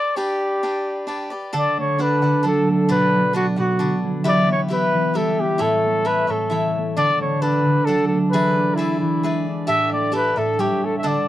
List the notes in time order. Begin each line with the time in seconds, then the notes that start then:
Already playing: A4 C5 D5
0.16 D4 G4 B4 D5
0.63 D4 G4 B4 D5
1.07 D4 G4 B4 D5
1.30 G4 B4 D5
1.53 D3 D4 A4 D5 F#5
1.77 A3 C#5
1.98 D4 A4 B4 D5 F#5
2.22 D3 A4 D5 F#5
2.43 F#3 D4 A4 D5 F#5
2.47 A4
2.68 A3 A4
2.89 B2 D4 B4 D5 F#5
3.13 F#3
3.33 B3 D4 F#4 B4 D5 F#5
3.56 B2 F#4 B4 D5 F#5
3.79 D3 D4 B4 D5 F#5
4.04 F#3
4.24 E3 E4 G4 B4 D5 E5
4.47 B3
4.52 C#5
4.68 E4 G4 B4 E5
4.74 B4
4.94 E3
5.14 G3 E4 G4 A4 B4 E5
5.38 B3 G4
5.58 A2 E4 A4 C#5 E5
5.84 A3
6.05 C#4 E4 A4 B4 C#5 E5
6.27 A2 A4 C#5 E5
6.50 E3 E4 A4 C#5 E5
6.76 A3
6.97 D3 D4 A4 D5 F#5
7.20 A3 C#5
7.42 D4 A4 B4 D5 F#5
7.65 D3
7.85 F#3 D4 A4 D5 F#5
8.08 A3 A4
8.31 E3 G#4 B4 D5 E5
8.56 D4
8.75 E4 G#4 E5
8.79 B4 D5
9.00 E3 E4
9.23 G#3 G#4 B4 D5 E5
9.47 D4
9.67 A2 G4 A4 D5 E5
9.92 A3 D5
10.12 D4 G4 A4 B4 D5 E5
10.36 A2 A4 D5 E5
10.58 G3 G4 A4 C#5 E5
10.83 A3 A4
10.98 E5
11.03 D3 D4 A4 D5 F#5